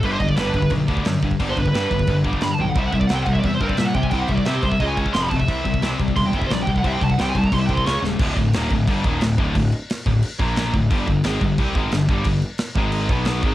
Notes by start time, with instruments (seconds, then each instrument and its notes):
0.03 picked electric bass G1, distorted electric guitar G2 D3 G3, lead electric guitar B4, kick, crash
0.11 lead electric guitar C5
0.18 picked electric bass G1, distorted electric guitar G2 D3, lead electric guitar D#5, kick, crash
0.29 lead electric guitar D5, kick
0.36 picked electric bass G1, distorted electric guitar G2 D3 G3, lead electric guitar B4, snare, crash
0.54 picked electric bass G1, distorted electric guitar G2 D3, kick, crash
0.62 kick
0.70 picked electric bass B1, distorted electric guitar G2 D3, kick, crash
0.88 picked electric bass D2, distorted electric guitar G2 D3 G3, kick, crash
0.97 kick
1.05 picked electric bass F#2, distorted electric guitar G2 D3, snare, crash
1.22 picked electric bass G2, distorted electric guitar G2 D3, kick, crash
1.31 kick
1.39 picked electric bass G1, distorted electric guitar G2 D3 G3, kick, crash
1.50 lead electric guitar C5
1.57 picked electric bass G1, distorted electric guitar G2 D3, lead electric guitar B4, kick, crash
1.66 lead electric guitar B4, kick
1.74 distorted electric guitar G2 D3 G3, picked electric bass G2, snare, crash
1.91 picked electric bass G1, distorted electric guitar G2 D3, kick, crash
1.99 kick
2.07 picked electric bass G1, distorted electric guitar G2 D3, kick, crash
2.24 distorted electric guitar G2 D3 G3, kick, crash
2.33 kick
2.41 picked electric bass G2, distorted electric guitar G2 D3, lead electric guitar B5, snare, crash
2.54 lead electric guitar A5
2.59 picked electric bass B1, distorted electric guitar G2 D3, lead electric guitar G5, high tom
2.70 lead electric guitar F#5
2.75 picked electric bass C2, distorted electric guitar C3 G3 C4, lead electric guitar E5, kick, crash
2.87 lead electric guitar F#5
2.92 picked electric bass C2, distorted electric guitar C3 G3, lead electric guitar E5, kick, crash
3.00 lead electric guitar D5, kick
3.07 picked electric bass C2, distorted electric guitar C3 G3 C4, lead electric guitar F#5, snare, crash
3.16 lead electric guitar G5
3.23 picked electric bass C2, distorted electric guitar C3, lead electric guitar F#5, kick, crash
3.27 distorted electric guitar G3
3.33 lead electric guitar E5, kick
3.39 distorted electric guitar C3, lead electric guitar D5, crash
3.43 picked electric bass E2, distorted electric guitar G3, lead electric guitar E5, kick
3.54 lead electric guitar C5
3.60 picked electric bass G2, distorted electric guitar C3 G3 C4, lead electric guitar A#4, kick, crash
3.68 lead electric guitar D5, kick
3.77 picked electric bass A#2, distorted electric guitar C3 G3, lead electric guitar E5, snare, crash
3.85 lead electric guitar F#5
3.94 picked electric bass C3, distorted electric guitar C3 G3, lead electric guitar G5, kick, crash
4.03 lead electric guitar G#5, kick
4.10 picked electric bass C2, distorted electric guitar C3 G3 C4, lead electric guitar G5, kick, crash
4.20 lead electric guitar F#5
4.28 picked electric bass C2, distorted electric guitar C3, lead electric guitar E5, kick, crash
4.32 distorted electric guitar G3, lead electric guitar D5
4.38 kick
4.45 picked electric bass C3, distorted electric guitar C3 G3 C4, lead electric guitar E5, snare, crash
4.54 lead electric guitar G4
4.62 picked electric bass C2, distorted electric guitar C3 G3, lead electric guitar C5, kick, crash
4.69 lead electric guitar E5, kick
4.80 picked electric bass C#2, distorted electric guitar C#3 G#3 C#4, lead electric guitar D#5, kick, crash
4.87 lead electric guitar G#5
4.97 distorted electric guitar C#3 G#3 C#4, kick, crash
5.06 kick
5.13 picked electric bass F1, distorted electric guitar F2 C3 F3, lead electric guitar C6, snare, crash
5.22 lead electric guitar B5
5.30 picked electric bass D1, distorted electric guitar F2 C3, lead electric guitar A5, kick, crash
5.36 lead electric guitar E5, kick
5.49 picked electric bass C2, distorted electric guitar C3 G3 C4, kick, crash
5.65 picked electric bass C2, distorted electric guitar C3 G3, kick, crash
5.74 kick
5.82 picked electric bass C2, distorted electric guitar C3 G3 C4, snare, crash
5.99 picked electric bass C2, distorted electric guitar C3 G3, kick, crash
6.08 kick
6.16 picked electric bass E1, distorted electric guitar C3 G3, lead electric guitar C6, kick, crash
6.27 lead electric guitar G5
6.32 picked electric bass G1, distorted electric guitar C3 G3 C4, kick, crash
6.38 lead electric guitar E5, kick
6.47 picked electric bass A#1, distorted electric guitar C3, lead electric guitar C5, crash
6.51 distorted electric guitar G3, lead electric guitar D5, snare
6.63 distorted electric guitar C3 G3, lead electric guitar G5
6.67 picked electric bass C2, kick, crash
6.76 lead electric guitar F#5, kick
6.83 picked electric bass C2, distorted electric guitar C3 G3 C4, kick, crash
6.87 lead electric guitar E5
6.94 lead electric guitar G5
7.00 picked electric bass C2, distorted electric guitar C3 G3, lead electric guitar A5, kick, crash
7.10 lead electric guitar F#5, kick
7.18 picked electric bass C2, distorted electric guitar C3 G3 C4, lead electric guitar G5, snare, crash
7.30 lead electric guitar G#5
7.35 picked electric bass C2, distorted electric guitar C3 G3, lead electric guitar A5, kick, crash
7.44 lead electric guitar A#5, kick
7.52 picked electric bass C2, distorted electric guitar C3 G3, lead electric guitar C6, kick, crash
7.59 lead electric guitar E5
7.67 distorted electric guitar C3 G3 C4, lead electric guitar G5, kick, crash
7.73 lead electric guitar C6
7.77 kick
7.85 picked electric bass C#2, distorted electric guitar C#3 G#3 C#4, lead electric guitar C#6, snare, crash
8.02 picked electric bass D#1, distorted electric guitar C#3 G#3, snare
8.19 picked electric bass D1, distorted electric guitar D2 A2 D3, kick, crash
8.36 picked electric bass D1, distorted electric guitar D2 A2, kick, crash
8.53 picked electric bass D#1, distorted electric guitar D#2 A#2 D#3, snare, crash
8.71 picked electric bass D1, distorted electric guitar D2 A2, kick, crash
8.87 picked electric bass G1, distorted electric guitar G2 D3 G3, kick, crash
9.04 picked electric bass D#1, distorted electric guitar D#2 A#2 D#3, kick, crash
9.21 picked electric bass D1, distorted electric guitar D2 A2, snare, crash
9.38 picked electric bass D1, distorted electric guitar D2 A2 D3, kick, crash
9.55 picked electric bass D1, distorted electric guitar D2 A2, kick, crash
9.72 crash
9.90 snare, crash
10.06 picked electric bass D1, distorted electric guitar D2 A2, kick, crash
10.22 crash
10.39 picked electric bass A#1, distorted electric guitar A#2 F3 A#3, kick, crash
10.56 snare, crash
10.74 picked electric bass D1, distorted electric guitar D2 A2, kick, crash
10.90 picked electric bass G1, distorted electric guitar G2 D3 G3, kick, crash
11.07 picked electric bass G1, distorted electric guitar G2 D3, kick, crash
11.24 picked electric bass G#1, distorted electric guitar G#2 D#3 G#3, snare, crash
11.41 picked electric bass G1, distorted electric guitar G2 D3, kick, crash
11.58 picked electric bass C2, distorted electric guitar C3 G3 C4, kick, crash
11.75 picked electric bass G#1, distorted electric guitar G#2 D#3 G#3, kick, crash
11.91 picked electric bass G1, distorted electric guitar G2 D3, snare, crash
12.09 picked electric bass G1, distorted electric guitar G2 D3 G3, kick, crash
12.24 picked electric bass G1, distorted electric guitar G2 D3, kick, crash
12.42 crash
12.58 snare, crash
12.75 picked electric bass G#1, distorted electric guitar G#2 D#3 G#3, kick, crash
12.92 crash
13.09 picked electric bass B1, distorted electric guitar B2 F#3 B3, kick, crash
13.25 snare, crash
13.43 picked electric bass G#1, distorted electric guitar G#2 D#3 G#3, kick, crash